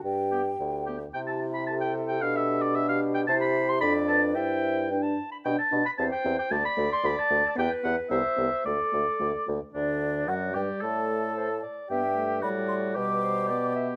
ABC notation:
X:1
M:2/4
L:1/16
Q:1/4=112
K:G
V:1 name="Oboe"
z2 G2 z2 G2 | [K:C] g a2 b a g2 g | f e2 d e f2 g | a b2 c' b2 a2 |
g4 z4 | [K:G] g a2 b a g2 g | a b2 c' b a2 a | g2 f2 e4 |
d6 z2 | D4 F2 G2 | A6 z2 | G4 F4 |
G4 G4 |]
V:2 name="Clarinet"
z2 B,2 z2 B,2 | [K:C] z4 A4- | A4 G4 | c4 d4 |
e4 g a2 b | [K:G] z4 c4 | d8 | B4 c4 |
A6 z2 | z4 d4- | d4 c2 d2 | e4 d4 |
B2 c2 d2 e2 |]
V:3 name="Flute"
g6 z2 | [K:C] G8 | G8 | G4 A2 B2 |
c4 B2 z2 | [K:G] G2 G2 G2 G2 | F2 F2 F2 F2 | G2 G2 G2 G2 |
F2 F2 F2 F2 | d4 f2 g2 | a6 z2 | g4 b2 c'2 |
d'6 z2 |]
V:4 name="French horn"
G6 z2 | [K:C] E8 | D8 | E4 D4 |
E4 D2 z2 | [K:G] D2 D2 C2 C2 | A,2 A,2 A,2 A,2 | B,2 B,2 B,2 B,2 |
A,2 A,2 A,2 A,2 | D,4 F,2 G,2 | A,6 z2 | B,2 A,2 G,4 |
G,4 B,4 |]
V:5 name="Bassoon" clef=bass
G,,4 D,,4 | [K:C] C,8 | B,,8 | C,4 F,,4 |
G,,6 z2 | [K:G] B,,2 B,,2 E,,2 E,,2 | D,,2 D,,2 D,,2 D,,2 | E,,2 E,,2 C,,2 C,,2 |
D,,2 D,,2 D,,2 D,,2 | D,,4 F,,2 G,,2 | A,,6 z2 | G,,4 A,,4 |
B,,8 |]